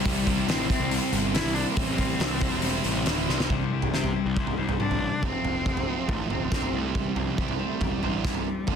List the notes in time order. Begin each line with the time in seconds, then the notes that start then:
0.05 C2 C3 G3 C4 E4 G4 C5, kick, open hi-hat
0.26 C4 E4 G4 C5, kick, open hi-hat
0.48 A1 C3 G3 C4 E4 G4 C5, snare, open hi-hat
0.69 C4 E4 G4 C5, kick, open hi-hat
0.80 C2
0.91 C3 G3 C4 E4 G4 C5, open hi-hat
1.12 G1 C4 E4 G4 C5, open hi-hat
1.34 C4 E4 G4 C5, snare, open hi-hat
1.45 C2, snare
1.54 D4 E4 G4 C5, open hi-hat
1.58 C4
1.70 A#3
1.76 A1 C3 G3 C4 E4 G4 C5, kick, open hi-hat
1.98 C4 E4 G4 C5, kick, open hi-hat
2.20 C2 C3 G3 C4 E4 G4 C5, snare, open hi-hat
2.41 E4 G4 C5, kick, open hi-hat
2.45 C4
2.51 E1
2.62 C3 G3 C4 E4 G4 C5, open hi-hat
2.84 A1 C4 E4 G4 C5, open hi-hat
3.06 D1 C4 E4 G4 C5, snare, open hi-hat
3.28 C2 C4 E4 G4 C5, snare
3.40 snare
3.49 C2 C3 G3 C4 E4 G4 C5, kick, floor tom
3.71 C3 G3 C4 E4 G4 C5
3.82 floor tom
3.92 C3 G3 C4 E4 G4 C5, snare
4.04 floor tom
4.14 C3 G3 C4 E4 G4 C5
4.26 C2
4.36 C3 G3 C4 E4 G4 C5, kick
4.47 floor tom
4.57 C2 C3 G3 C4 E4 G4 C5
4.69 floor tom
4.79 C3 G3 C4 D4 E4 G4 C5, mid tom
4.90 A1, floor tom
5.00 C3 G3 C4 E4 G4 C5
5.22 F1 F2 C3 F3 A3 C4 F4, kick, floor tom
5.43 F1, floor tom
5.65 F1 C4, kick
5.77 floor tom
5.87 F2 C3 F3 A3 C4 F4
6.08 A1 A3 C4, kick, floor tom
6.29 D1 C4 F4, floor tom
6.52 F2 C3 F3 A3 C4 F4, kick, snare
6.62 floor tom
6.73 C2 C3 G3 C4 E4 G4
6.78 A3 C5
6.95 C3 G3, kick, floor tom
7.16 C2, floor tom
7.20 F3
7.37 C2 C3 G3 C4 E4 G4, kick
7.42 G3 C5
7.48 floor tom
7.56 G3 C5
7.64 A3
7.81 E1 G3 G4, kick, floor tom
8.03 A1 C3 G3 C4 E4 G4 C5, floor tom
8.25 G3 E4, kick, snare
8.34 floor tom
8.47 C4
8.67 D1 D2 A2 D3 A3 F4, kick, floor tom